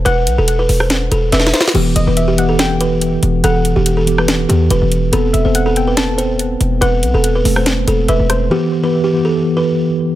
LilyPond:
<<
  \new Staff \with { instrumentName = "Synth pluck" } { \time 4/4 \key e \minor \tempo 4 = 142 fis''4 r2 e''8 c''8 | r8 dis''8 e''8 fis''8 g''4 r4 | fis''4 r2. | r8 e''8 fis''8 g''8 a''4 r4 |
fis''4 r2 e''8 c''8 | r1 | }
  \new Staff \with { instrumentName = "Kalimba" } { \time 4/4 \key e \minor b'8. a'8 b'8 c''8. a'8 b'4 | g'8. b'8 g'8 a'8. b'4. | a'8. g'8 a'8 b'8. g'8 b'4 | a'8. c''8 a'8 b'8. c''4. |
b'8. a'8 b'8 c''8. a'8 b'4 | g'8. b'8 g'8 a'8. b'4. | }
  \new Staff \with { instrumentName = "Tine electric piano" } { \time 4/4 \key e \minor r1 | <e b g'>8 r16 <e b g'>8 r16 <e b g'>4~ <e b g'>16 r4 r16 | r4. <e b g'>4~ <e b g'>16 r4 r16 | <b c' a'>8 r16 <b c' a'>8 r16 <b c' a'>4~ <b c' a'>16 r4 r16 |
r4. <a c' a'>4~ <a c' a'>16 r4 r16 | <e b g'>8 r16 <e b g'>8 r16 <e b g'>4~ <e b g'>16 r4 r16 | }
  \new Staff \with { instrumentName = "808-style bass" } { \clef bass \time 4/4 \key e \minor e,,8 b,,16 e,,8. e,,4 e,,8 e,,8 r8 | e,,8 e,,16 e,,2~ e,,8. e,,8 | e,,8. e,,4.~ e,,16 e,8 e,,16 e,,8. | e,,8 e,,16 e,,2~ e,,8. e,,8 |
e,,8 b,,16 e,,8. e,,4 e,,8 e,,16 e,,8. | r1 | }
  \new DrumStaff \with { instrumentName = "Drums" } \drummode { \time 4/4 hh8 hh8 hh8 hho16 ss16 <hh sn>8 hh8 \tuplet 3/2 { <hh sn>16 sn16 sn16 <hh sn>16 sn16 sn16 } | cymc8 hh8 hh8 hh8 <hh sn>8 hh8 hh8 hh8 | hh8 hh8 hh8 hh16 ss16 <hh sn>8 hh8 hh8 hh8 | hh8 hh8 hh8 hh8 <hh sn>8 hh8 hh8 hh8 |
hh8 hh8 hh8 hho16 ss16 <hh sn>8 hh8 hh8 <hh ss>8 | r4 r4 r4 r4 | }
>>